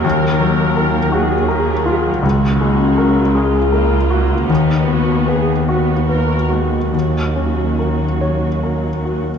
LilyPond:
<<
  \new Staff \with { instrumentName = "Grand piano" } { \time 6/8 \key ees \minor \tempo 4. = 52 ees,8 ges8 bes'8 ges'8 bes'8 f'8 | des,8 aes8 bes'8 aes'8 bes'8 ges'8 | dis,8 b8 b'8 fis'8 b'8 fis'8 | ees,8 des'8 bes'8 des''8 bes'8 ges'8 | }
  \new Staff \with { instrumentName = "Harp" } { \time 6/8 \key ees \minor <ees fis ges' bes'>8 ees'8 f'8 ges'8 bes'8 f'8 | des8 des'8 ges'8 aes'8 bes'8 ges'8 | dis8 dis'8 fis'8 b'8 fis'8 b8 | ees8 ees'8 ges'8 bes'8 des''8 ges'8 | }
  \new Staff \with { instrumentName = "Viola section" } { \time 6/8 \key ees \minor << { bes'4. aes'4. | ges'4. f'4. | dis'8 fis'8 aes'8 fis'4. | ges'2~ ges'8. r16 | } \\ { ges4. ges4. | aes8 bes8 ges8 aes8 bes8 bes8 | b4. b8 bes'8 aes8 | ges2~ ges8. r16 | } >> }
  \new Staff \with { instrumentName = "Cello section" } { \clef bass \time 6/8 \key ees \minor ees,2. | des,2. | dis,2.~ | dis,2~ dis,8. r16 | }
  \new Staff \with { instrumentName = "Double bass section" } { \clef bass \time 6/8 \key ees \minor ees,2. | des,2. | dis,2.~ | dis,2~ dis,8. r16 | }
>>